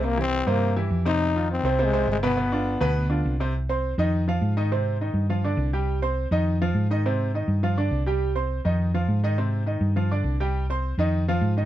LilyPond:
<<
  \new Staff \with { instrumentName = "Grand piano" } { \time 4/4 \key c \minor \tempo 4 = 206 <c c' c''>8 <e e' g'>4 <c c' c''>4 <e e' g'>4 <c c' c''>8~ | <c c' c''>8 <ees ees' f'>4 <c c' c''>8 <c c' c''>8 <c c' c''>4 <b, b b'>8 | <b, b b'>8 <d d' f'>4 <b, b b'>4 <d d' f'>4 <c c' c''>8 | r8 <c' c'' c'''>4 <ees ees' ees''>4 <f f' f''>4 <ees ees' ees''>8 |
<c c' c''>4 <ees ees' ees''>4 <f f' f''>8 <d d' d''>4 <g g' g''>8~ | <g g' g''>8 <c' c'' c'''>4 <ees ees' ees''>4 <f f' f''>4 <ees ees' ees''>8 | <c c' c''>4 <ees ees' ees''>4 <f f' f''>8 <d d' d''>4 <g g' g''>8~ | <g g' g''>8 <c' c'' c'''>4 <ees ees' ees''>4 <f f' f''>4 <ees ees' ees''>8 |
<c c' c''>4 <ees ees' ees''>4 <f f' f''>8 <d d' d''>4 <g g' g''>8~ | <g g' g''>8 <c' c'' c'''>4 <ees ees' ees''>4 <f f' f''>4 <ees ees' ees''>8 | }
  \new Staff \with { instrumentName = "Trombone" } { \time 4/4 \key c \minor bes8 c'4 bes4 r4 ees'8~ | ees'4 c'4 aes4 aes8 b8~ | b2.~ b8 r8 | r1 |
r1 | r1 | r1 | r1 |
r1 | r1 | }
  \new Staff \with { instrumentName = "Fingered electric bass" } { \clef bass \time 4/4 \key c \minor c,4. g,4. f,4~ | f,4. c,4. g,,4~ | g,,4. d,4. c,4~ | c,4. f,4. aes,4~ |
aes,4. g,4. c,4~ | c,4. f,4. aes,4~ | aes,4. g,4. c,4~ | c,4. f,4. aes,4~ |
aes,4. g,4. c,4~ | c,4. f,4. aes,4 | }
>>